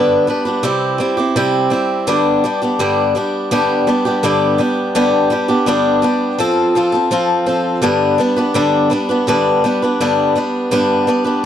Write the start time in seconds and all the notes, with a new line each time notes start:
Already playing: G2 D3 G3 B3 D4 B4
0.27 G3 B3 D4 B4
0.45 G3 B3 D4 B4
0.63 C3 G3 C4 E4 G4
0.98 G3 C4 E4 G4
1.17 C4 E4 G4
1.36 C3 G3 C4 E4 G4
1.70 G3 C4 E4 G4
2.07 G2 D3 G3 B3 D4 G4
2.44 G3 B3 D4 G4
2.62 G3 B3 D4 G4
2.79 G2 D3 G3 B3 D4 G4
3.15 G3 B3 D4 G4
3.51 G2 D3 G3 B3 D4 G4
3.87 G3 B3 D4 G4
4.05 G3 B3 D4 G4
4.23 G2 D3 G3 B3 D4 G4
4.58 G3 B3 D4 G4
4.95 G2 D3 G3 B3 D4 G4
5.30 G3 B3 D4 G4
5.48 G3 B3 D4 G4
5.66 G2 D3 G3 B3 D4 G4
6.02 G3 B3 D4 G4
6.38 F3 C4 F4 A4
6.75 F3 C4 F4 A4
6.92 C4 F4 A4
7.11 F3 C4 F4 A4
7.46 F3 C4 F4 A4
7.82 G2 D3 G3 B3 D4 B4
8.18 G3 B3 D4 B4
8.36 G3 B3 D4 B4
8.54 G2 D3 G3 B3 D4 B4
8.90 G3 B3 D4 B4
9.09 G3 B3 D4 B4
9.27 G2 D3 G3 B3 D4 B4
9.64 G3 B3 D4 B4
9.82 G3 B3 D4 B4
10.00 G2 D3 G3 B3 D4 B4
10.36 G3 B3 D4 B4
10.71 G2 D3 G3 B3 D4 B4
11.07 G3 B3 D4 B4
11.24 G3 B3 D4 B4